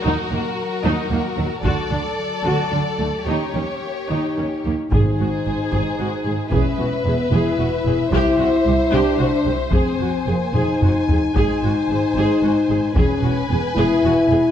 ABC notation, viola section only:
X:1
M:6/8
L:1/8
Q:3/8=75
K:Ebdor
V:1 name="Viola section"
E B, z E B, G, | ^F =D z F D =A, | E D z E D B, | A G A A G A |
^G _G ^G G _G ^G | =G _G =G G _G =G | A G A A G A | A G A A G A |
^G _G ^G G _G ^G |]